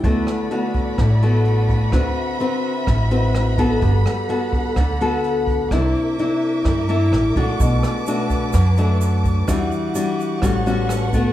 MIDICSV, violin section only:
0, 0, Header, 1, 2, 480
1, 0, Start_track
1, 0, Key_signature, 2, "major"
1, 0, Tempo, 472181
1, 42, Time_signature, 4, 2, 24, 8
1, 11516, End_track
2, 0, Start_track
2, 0, Title_t, "Violin section"
2, 0, Program_c, 0, 48
2, 53, Note_on_c, 0, 66, 74
2, 55, Note_on_c, 0, 74, 65
2, 57, Note_on_c, 0, 83, 85
2, 1949, Note_off_c, 0, 74, 0
2, 1957, Note_on_c, 0, 76, 75
2, 1959, Note_on_c, 0, 60, 67
2, 3849, Note_off_c, 0, 66, 0
2, 3860, Note_off_c, 0, 76, 0
2, 3861, Note_off_c, 0, 60, 0
2, 3880, Note_on_c, 0, 69, 75
2, 3883, Note_on_c, 0, 78, 74
2, 5768, Note_off_c, 0, 83, 0
2, 5781, Note_off_c, 0, 69, 0
2, 5783, Note_off_c, 0, 78, 0
2, 5803, Note_on_c, 0, 86, 82
2, 5806, Note_on_c, 0, 70, 73
2, 5806, Note_on_c, 0, 76, 73
2, 7704, Note_off_c, 0, 70, 0
2, 7704, Note_off_c, 0, 76, 0
2, 7728, Note_on_c, 0, 81, 71
2, 7732, Note_on_c, 0, 71, 71
2, 9625, Note_off_c, 0, 81, 0
2, 9627, Note_off_c, 0, 71, 0
2, 9650, Note_on_c, 0, 78, 75
2, 9654, Note_on_c, 0, 55, 72
2, 10561, Note_off_c, 0, 86, 0
2, 10585, Note_on_c, 0, 85, 78
2, 10587, Note_on_c, 0, 71, 75
2, 10588, Note_on_c, 0, 81, 66
2, 10598, Note_off_c, 0, 55, 0
2, 11516, Note_off_c, 0, 71, 0
2, 11516, Note_off_c, 0, 78, 0
2, 11516, Note_off_c, 0, 81, 0
2, 11516, Note_off_c, 0, 85, 0
2, 11516, End_track
0, 0, End_of_file